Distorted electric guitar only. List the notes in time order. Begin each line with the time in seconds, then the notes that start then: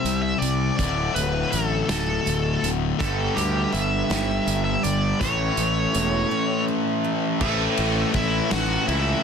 Already playing: C3 G3 C4 E4 G4 C5
0.79 D2 A2 D3 A3 F#4
3.00 G2 D3 G3 B3 D4 G4
5.20 A2 E3 A3 C#4 E4 A4
7.40 A2 E3 A3 C#4 E4 A4